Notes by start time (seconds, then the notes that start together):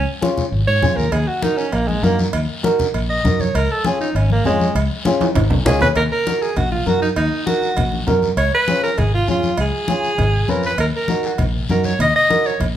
0.21 C#4 F4 G#4, high conga, short guiro
0.38 low conga, short guiro
0.52 G#1, high conga, long guiro
0.67 G#2 C#5
0.82 F2 C#4 F4 G#4, high conga, low conga, short guiro
0.96 D#2 A#4, short guiro
1.12 D#2 G#4, cowbell, high conga, long guiro
1.27 F#4
1.42 D#4 F#4 A#4, high conga, short guiro
1.57 C#4, short guiro
1.72 A#1 A#3, cowbell, high conga, long guiro
1.88 G#3, high conga
2.03 F#2 A#3 D#4 F#4 A#4, high conga, short guiro
2.19 high conga, short guiro
2.33 D#2, cowbell, high conga, long guiro
2.63 D#4 F#4 A#4, high conga, short guiro
2.79 low conga, short guiro
2.94 A#1, cowbell, high conga, long guiro
3.10 D#5
3.24 F#2 D#4 F#4 A#4, high conga, low conga, short guiro
3.40 C#5, high conga, short guiro
3.55 C#2 A#4, cowbell, high conga, long guiro
3.71 A4
3.85 C#4 F4 G#4, high conga, short guiro
4.01 D#4, short guiro
4.15 G#1 C#4, cowbell, high conga, long guiro
4.30 A#3, high conga
4.45 F2 G#3 C#4 F4 G#4, high conga, low timbale, short guiro
4.60 high conga, short guiro
4.75 C#2, cowbell, high conga, long guiro
5.05 C#4 F4 G#4, high conga, short guiro
5.21 high conga, high timbale, short guiro
5.35 G#1, cowbell, low conga, high timbale, long guiro
5.50 B1, low conga, low timbale
5.65 C#2 C#4 F4 G#4 D#5, low conga, short guiro
5.81 D#2 B4 C#5, low conga, low timbale, short guiro
5.96 D#2 A#4, cowbell, high conga, long guiro
6.12 A#4
6.26 D#4 F#4 A#4, high conga, short guiro
6.42 G#4, short guiro
6.56 A#1 F#4, cowbell, high conga, low conga, long guiro
6.71 F4, high conga
6.86 F#2 D#4 F#4 A#4, high conga, short guiro
7.02 D#4, short guiro
7.16 D#2 D#4, cowbell, long guiro
7.46 D#4 F#4 A#4, high conga, short guiro
7.62 short guiro
7.77 A#1, cowbell, high conga, low conga, long guiro
7.92 high conga
8.07 F#2 D#4 F#4 A#4, high conga, low conga, low timbale, short guiro
8.22 high conga, short guiro
8.37 C#2 C#5, cowbell, high conga, long guiro
8.54 B4
8.68 C#4 F4 G#4, high conga, short guiro
8.83 A#4, short guiro
8.98 G#1 G#4, cowbell, high conga, low conga, long guiro
9.14 F4
9.27 F2 C#4 F4 G#4, high conga, short guiro
9.42 high conga, short guiro
9.57 C#2 G#4, cowbell, high conga, long guiro
9.88 C#4 F4 G#4, high conga, short guiro
10.03 short guiro
10.18 G#1, cowbell, high conga, low conga, long guiro
10.48 F2 C#4 F4 A#4 B4, high conga, short guiro
10.63 B4, short guiro
10.78 D#2 A#4, cowbell, high conga, long guiro
10.96 A#4
11.08 D#4 F#4 A#4, high conga, short guiro
11.23 F#4, short guiro
11.38 A#1, cowbell, high conga, low conga, long guiro
11.69 F#2 D#4 F#4 A#4, high conga, short guiro
11.84 C#5, high conga, short guiro
11.99 D#2 D#5, cowbell, high conga, low conga, long guiro
12.16 D#5
12.29 D#4 F#4 A#4, high conga, short guiro
12.44 C#5, short guiro
12.60 A#1, cowbell, high conga, low conga, long guiro